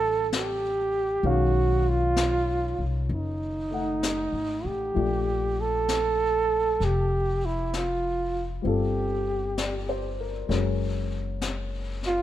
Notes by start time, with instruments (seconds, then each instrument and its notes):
Already playing: upright bass A1, grand piano D3 G3 C4 F4, flugelhorn A4
0.33 flugelhorn G4, brush sweep, snare, hi-hat pedal
1.23 upright bass B1, grand piano D#3 G#3 C#4 F5, brush sweep
1.28 flugelhorn F#4
1.89 flugelhorn F4
2.16 brush sweep, snare, hi-hat pedal
2.79 upright bass C2
3.09 upright bass F#1, brush sweep
3.14 flugelhorn D#4
3.71 grand piano A3 D#4 F#5
4.03 brush sweep, snare, hi-hat pedal
4.33 upright bass G#1
4.65 upright bass A1, flugelhorn G4
4.94 upright bass A#1, grand piano F3 A3 D4, brush sweep
4.99 grand piano G4
5.61 flugelhorn A4
5.88 brush sweep, snare, hi-hat pedal
6.80 upright bass F1, flugelhorn G4, brush sweep, snare
7.45 flugelhorn E4
7.73 flugelhorn F4, brush sweep, snare, hi-hat pedal
8.62 upright bass G1, grand piano G3 C4, brush sweep
8.66 grand piano F4 A4, flugelhorn G4
9.58 grand piano D5, brush sweep, snare, hi-hat pedal
9.89 grand piano C5
10.20 grand piano A#4
10.48 upright bass F#1, grand piano F#3 G#3 C#4 A#4, brush sweep, snare
11.41 brush sweep, snare, hi-hat pedal
12.03 flugelhorn F4, snare